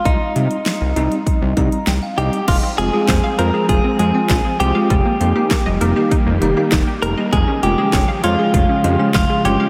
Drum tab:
CC |----------------|x---------------|----------------|----------------|
HH |x-xxx-xxx-xxx-xx|x-x-x-x-x-x-x-x-|x-x-x-x-x-x-x-x-|x-x-x-x-x-x-x-x-|
CP |----------------|----x-------x---|----x-------x---|----x-------x---|
SD |----o-------o---|----o-------o---|----o-------o---|----o-------o---|
BD |o-------o-o-----|o---o---o---o---|o---o---o---o---|o---o---o---o---|